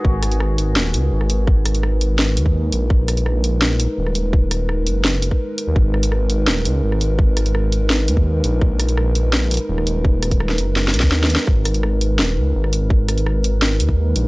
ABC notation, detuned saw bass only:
X:1
M:4/4
L:1/16
Q:1/4=168
K:G#m
V:1 name="Detuned saw bass" clef=bass
G,,,8 D,,,2 C,,2 G,,,4- | G,,,8- G,,,2 D,,4 A,,,2- | A,,,8- A,,,3 z D,,,4- | D,,,6 F,,,4- F,,, z4 D,, |
G,,,8 D,,,2 C,,2 G,,,4- | G,,,8- G,,,2 D,,4 A,,,2- | A,,,8- A,,,3 z D,,,4- | D,,,6 F,,,4 B,,, D,,4 z |
G,,,8 D,,,2 C,,2 G,,,4- | G,,,8- G,,,2 D,,4 A,,,2 |]